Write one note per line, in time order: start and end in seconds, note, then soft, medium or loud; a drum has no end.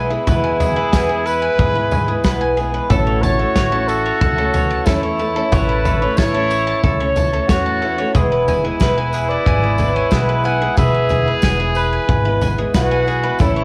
0.00 0.16 B1 medium
0.00 0.11 E3 medium
0.00 0.11 G#3 medium
0.00 0.10 B3 medium
0.00 2.59 E4 loud
0.00 0.26 B4 medium
0.00 0.43 G#5 medium
0.10 0.27 E3 medium
0.10 0.27 G#3 medium
0.10 0.27 B3 medium
0.10 0.27 E4 medium
0.10 0.59 G#4 medium
0.27 0.76 E2 medium
0.27 0.81 E2 loud
0.27 0.77 B2 medium
0.27 0.77 E3 medium
0.27 0.77 G#3 medium
0.27 0.76 B3 loud
0.27 0.75 E4 loud
0.27 0.75 B4 loud
0.27 kick loud
0.27 floor tom loud
0.27 tambourine medium
0.44 0.91 G#5 medium
0.59 1.27 G#4 medium
0.59 1.08 G#4 medium
0.59 floor tom medium
0.59 tambourine medium
0.76 0.92 E3 soft
0.76 0.93 G#3 soft
0.76 0.93 B3 medium
0.76 0.93 E4 medium
0.76 1.25 B4 medium
0.92 1.09 E2 medium
0.92 1.47 E2 medium
0.92 1.09 B2 medium
0.92 1.10 E3 loud
0.92 1.10 G#3 medium
0.92 1.09 B3 loud
0.92 1.08 E4 loud
0.92 1.41 G#5 medium
0.92 kick loud
0.92 snare loud
0.92 tambourine loud
1.09 1.77 E3 soft
1.09 1.76 G#3 soft
1.09 1.75 B3 soft
1.09 1.74 E4 medium
1.09 1.58 G#4 medium
1.26 1.74 B4 medium
1.26 2.57 B4 loud
1.26 tambourine medium
1.42 1.91 G#5 medium
1.59 2.13 G#2 medium
1.59 2.07 G#4 medium
1.59 kick loud
1.59 floor tom loud
1.59 tambourine soft
1.75 1.90 E3 soft
1.75 1.92 G#3 soft
1.75 1.92 B3 medium
1.75 1.91 E4 medium
1.75 2.23 B4 medium
1.91 2.08 E3 medium
1.91 2.09 G#3 medium
1.91 2.07 B3 medium
1.91 2.06 E4 medium
1.91 2.40 G#5 medium
1.91 floor tom medium
1.91 tambourine medium
2.07 2.24 E3 soft
2.07 2.25 G#3 medium
2.07 2.25 B3 medium
2.07 2.24 E4 medium
2.07 2.56 G#4 medium
2.24 2.78 B1 medium
2.24 2.57 E2 medium
2.24 2.58 B2 medium
2.24 2.56 E3 medium
2.24 2.58 G#3 loud
2.24 2.58 B3 loud
2.24 2.58 E4 loud
2.24 2.73 B4 medium
2.24 kick loud
2.24 snare loud
2.24 tambourine medium
2.41 2.90 G#5 medium
2.57 2.74 E3 medium
2.57 2.74 G#3 medium
2.57 2.73 B3 medium
2.57 2.72 E4 medium
2.57 2.89 G#4 medium
2.57 tambourine soft
2.73 2.89 E3 soft
2.73 2.90 G#3 soft
2.73 2.90 B3 medium
2.73 2.90 E4 medium
2.73 2.90 B4 medium
2.89 3.44 A1 loud
2.89 3.39 A2 medium
2.89 3.39 E3 medium
2.89 3.40 A3 medium
2.89 3.39 C#4 medium
2.89 3.37 E4 loud
2.89 4.88 F#4 loud
2.89 3.24 A4 loud
2.89 3.38 A4 loud
2.89 kick loud
2.89 floor tom loud
2.89 tambourine medium
3.07 3.54 C#5 medium
3.22 3.89 C#5 loud
3.22 3.71 A5 medium
3.22 floor tom medium
3.22 tambourine medium
3.39 3.55 A3 soft
3.39 3.55 C#4 soft
3.39 3.55 E4 medium
3.39 3.88 A4 medium
3.55 4.10 A1 loud
3.55 3.72 A2 medium
3.55 3.72 E3 medium
3.55 3.72 A3 medium
3.55 3.71 C#4 medium
3.55 3.69 E4 loud
3.55 4.04 C#5 medium
3.55 kick loud
3.55 snare loud
3.55 tambourine medium
3.71 4.39 A3 soft
3.71 4.37 C#4 medium
3.71 4.36 E4 medium
3.71 4.20 A5 medium
3.88 5.19 A4 medium
3.88 4.37 A4 medium
3.88 tambourine medium
4.06 4.53 C#5 medium
4.21 4.75 C#2 medium
4.21 4.69 A5 loud
4.21 kick loud
4.21 floor tom medium
4.21 tambourine soft
4.36 4.53 A3 soft
4.36 4.54 C#4 medium
4.36 4.53 E4 medium
4.36 4.86 A4 medium
4.53 4.86 E3 medium
4.53 4.87 A3 medium
4.53 4.87 C#4 medium
4.53 4.87 E4 medium
4.53 5.02 C#5 medium
4.53 floor tom medium
4.53 tambourine medium
4.71 5.18 A5 medium
4.86 5.40 E2 medium
4.86 5.03 A2 medium
4.86 5.03 E3 medium
4.86 5.04 A3 medium
4.86 5.03 C#4 loud
4.86 6.17 E4 loud
4.86 5.01 E4 loud
4.86 5.35 A4 medium
4.86 kick loud
4.86 snare loud
4.86 tambourine medium
5.02 5.19 A3 soft
5.02 5.20 C#4 medium
5.02 5.19 E4 medium
5.02 5.51 C#5 medium
5.19 5.36 E3 medium
5.19 5.36 A3 medium
5.19 5.36 C#4 medium
5.19 5.34 E4 medium
5.19 5.68 A5 medium
5.19 tambourine soft
5.35 5.52 A3 soft
5.35 5.53 C#4 medium
5.35 5.52 E4 medium
5.35 5.84 A4 medium
5.52 6.06 A1 loud
5.52 6.01 A2 medium
5.52 6.02 E3 medium
5.52 6.02 A3 medium
5.52 6.02 C#4 medium
5.52 6.00 E4 medium
5.52 6.19 B4 loud
5.52 6.01 C#5 loud
5.52 kick loud
5.52 floor tom loud
5.52 tambourine medium
5.69 6.17 A5 medium
5.85 6.33 A4 medium
5.85 floor tom medium
5.85 tambourine medium
6.01 6.17 A3 soft
6.01 6.18 C#4 medium
6.01 6.18 E4 medium
6.01 6.50 C#5 medium
6.17 6.72 A1 loud
6.17 6.34 A2 medium
6.17 6.34 E3 medium
6.17 6.35 A3 medium
6.17 6.34 C#4 medium
6.17 7.18 E4 loud
6.17 6.32 E4 loud
6.17 6.83 C#5 loud
6.17 6.66 A5 medium
6.17 kick loud
6.17 snare loud
6.17 tambourine medium
6.33 7.01 A3 soft
6.33 7.00 C#4 medium
6.33 6.99 E4 medium
6.33 6.83 A4 medium
6.50 6.99 C#5 medium
6.50 tambourine medium
6.67 7.16 A5 medium
6.83 7.38 C#2 medium
6.83 7.32 A4 medium
6.83 7.78 C#5 loud
6.83 kick loud
6.83 floor tom loud
6.83 tambourine soft
6.99 7.16 A3 soft
6.99 7.16 C#4 medium
6.99 7.16 E4 medium
6.99 7.48 C#5 medium
7.16 7.32 E3 medium
7.16 7.33 A3 medium
7.16 7.32 C#4 medium
7.16 7.31 E4 medium
7.16 7.65 A5 medium
7.16 floor tom medium
7.16 tambourine medium
7.32 7.48 A3 soft
7.32 7.49 C#4 soft
7.32 7.49 E4 soft
7.32 7.81 A4 medium
7.48 8.03 E2 medium
7.48 7.82 A2 medium
7.48 7.81 E3 medium
7.48 7.82 A3 medium
7.48 7.82 C#4 medium
7.48 7.83 E4 medium
7.48 8.10 F#4 loud
7.48 7.97 C#5 medium
7.48 kick loud
7.48 snare loud
7.48 tambourine medium
7.66 8.15 A5 medium
7.82 7.98 E3 medium
7.82 7.99 A3 medium
7.82 7.98 C#4 medium
7.82 7.97 E4 medium
7.82 8.14 A4 medium
7.98 8.15 A3 soft
7.98 8.15 C#4 medium
7.98 8.15 E4 medium
7.98 8.15 C#5 medium
8.14 8.69 E1 loud
8.14 8.64 E2 medium
8.14 8.64 B2 loud
8.14 8.64 E3 medium
8.14 8.65 G#3 loud
8.14 8.63 B3 medium
8.14 10.79 E4 loud
8.14 8.62 E4 medium
8.14 8.63 G#4 loud
8.14 kick loud
8.14 floor tom loud
8.14 tambourine medium
8.32 8.80 B4 medium
8.48 8.96 G#5 medium
8.48 floor tom medium
8.48 tambourine medium
8.63 8.79 E3 medium
8.63 8.80 G#3 medium
8.63 8.80 B3 medium
8.63 8.80 E4 medium
8.63 9.13 G#4 medium
8.80 9.34 E1 loud
8.80 8.97 E2 medium
8.80 8.97 B2 medium
8.80 8.97 E3 loud
8.80 8.97 G#3 medium
8.80 8.96 B3 loud
8.80 8.95 E4 loud
8.80 9.29 B4 medium
8.80 kick loud
8.80 snare loud
8.80 tambourine medium
8.96 9.65 E3 soft
8.96 9.63 G#3 medium
8.96 9.62 B3 medium
8.96 9.61 E4 medium
8.96 9.46 G#5 medium
9.13 9.62 G#4 medium
9.13 9.30 B4 medium
9.13 tambourine medium
9.29 9.78 B4 medium
9.29 9.97 D5 medium
9.46 10.00 G#1 loud
9.46 9.95 G#5 medium
9.46 kick loud
9.46 floor tom loud
9.46 tambourine soft
9.62 9.77 E3 soft
9.62 9.78 G#3 medium
9.62 9.79 B3 medium
9.62 9.78 E4 medium
9.62 10.11 G#4 medium
9.78 10.11 E3 medium
9.78 10.12 G#3 medium
9.78 10.12 B3 medium
9.78 10.13 E4 medium
9.78 10.28 B4 medium
9.78 floor tom medium
9.78 tambourine medium
9.95 10.13 C#5 medium
9.95 10.44 G#5 medium
10.11 10.66 B1 medium
10.11 10.44 E2 medium
10.11 10.45 B2 medium
10.11 10.43 E3 medium
10.11 10.44 G#3 medium
10.11 10.45 B3 medium
10.11 10.46 E4 medium
10.11 10.61 G#4 medium
10.11 10.47 B4 medium
10.11 kick loud
10.11 snare loud
10.11 tambourine medium
10.29 10.77 B4 medium
10.44 10.61 E3 medium
10.44 10.61 G#3 medium
10.44 10.61 B3 medium
10.44 10.60 E4 medium
10.44 10.77 F#5 loud
10.44 10.93 G#5 medium
10.44 tambourine soft
10.61 10.77 E3 soft
10.61 10.77 G#3 soft
10.61 10.78 B3 medium
10.61 10.77 E4 medium
10.61 11.10 G#4 medium
10.77 11.31 E1 loud
10.77 11.26 E2 medium
10.77 11.27 B2 medium
10.77 11.27 E3 medium
10.77 11.27 G#3 medium
10.77 11.26 B3 loud
10.77 11.25 E4 medium
10.77 12.47 G#4 loud
10.77 11.27 B4 medium
10.77 11.39 E5 loud
10.77 kick loud
10.77 floor tom loud
10.77 tambourine medium
10.95 11.43 G#5 medium
11.09 11.59 G#4 medium
11.09 floor tom medium
11.09 tambourine medium
11.26 11.43 E3 soft
11.26 11.43 G#3 soft
11.26 11.43 B3 medium
11.26 11.43 E4 medium
11.26 11.75 B4 medium
11.42 11.97 E1 loud
11.42 11.59 E2 medium
11.42 11.60 B2 medium
11.42 11.60 E3 medium
11.42 11.60 G#3 medium
11.42 11.59 B3 medium
11.42 11.58 E4 loud
11.42 11.92 G#5 medium
11.42 kick loud
11.42 snare loud
11.42 tambourine medium
11.59 12.28 E3 soft
11.59 12.26 G#3 soft
11.59 12.25 B3 medium
11.59 12.25 E4 medium
11.59 12.08 G#4 medium
11.75 12.70 B4 loud
11.75 12.24 B4 medium
11.75 tambourine medium
11.93 12.41 G#5 medium
12.09 12.62 G#1 medium
12.09 12.57 G#4 medium
12.09 kick loud
12.09 floor tom loud
12.09 tambourine soft
12.25 12.40 E3 soft
12.25 12.42 G#3 medium
12.25 12.42 B3 medium
12.25 12.41 E4 medium
12.25 12.74 B4 medium
12.41 12.58 E3 medium
12.41 12.58 G#3 medium
12.41 12.58 B3 medium
12.41 12.57 E4 medium
12.41 12.90 G#5 medium
12.41 floor tom medium
12.41 tambourine medium
12.58 12.74 E3 soft
12.58 12.74 G#3 soft
12.58 12.74 B3 medium
12.58 12.74 E4 medium
12.58 13.06 G#4 medium
12.74 13.28 B1 medium
12.74 13.07 E2 medium
12.74 13.07 B2 medium
12.74 13.05 E3 loud
12.74 13.06 G#3 medium
12.74 13.07 B3 loud
12.74 13.08 E4 loud
12.74 13.41 F#4 loud
12.74 13.22 B4 medium
12.74 kick loud
12.74 snare loud
12.74 tambourine loud
12.91 13.40 G#5 medium
13.06 13.23 E3 medium
13.06 13.24 G#3 medium
13.06 13.23 B3 medium
13.06 13.22 E4 medium
13.06 13.40 G#4 medium
13.06 tambourine soft
13.23 13.39 E3 medium
13.23 13.40 G#3 medium
13.23 13.40 B3 medium
13.23 13.40 E4 medium
13.23 13.40 B4 medium
13.39 13.64 A1 loud
13.39 13.64 A2 medium
13.39 13.64 E3 loud
13.39 13.64 A3 medium
13.39 13.64 C#4 medium
13.39 13.64 E4 loud
13.39 13.64 A4 loud
13.39 kick loud
13.39 floor tom loud
13.39 tambourine medium
13.56 13.64 C#5 medium